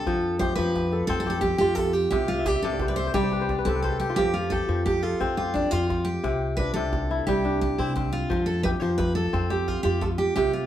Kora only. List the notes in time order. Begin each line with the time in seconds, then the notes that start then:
Already playing: C3 G3 C4 D4 E4
0.07 F3
0.40 G4
0.58 F3
0.92 A4
1.09 C4
1.26 G4
1.61 F4
1.78 F4
2.12 C3
2.39 E5
2.47 D5
2.55 E5
2.65 C3 F5
2.73 D5
2.81 C5
2.90 D5
2.99 E5
3.07 C5
3.15 G3 D5
3.24 C5
3.32 B4
3.41 C5
3.50 D5
3.58 B4
3.66 C4 A4
3.75 B4
3.84 C5
3.92 A4
4.01 G4
4.10 F4
4.18 F3
4.52 G4
4.69 F3
5.03 A4
5.20 C4
5.38 G4
5.72 F4
5.89 F4
6.24 C3
6.59 D4
6.76 C3
7.11 E4
7.28 G3
7.45 D4
7.79 C4
7.96 C4
8.30 F3
8.65 G4
8.82 F3
9.16 A4
9.33 C4
9.50 G4
9.85 F4
10.02 F4
10.37 C3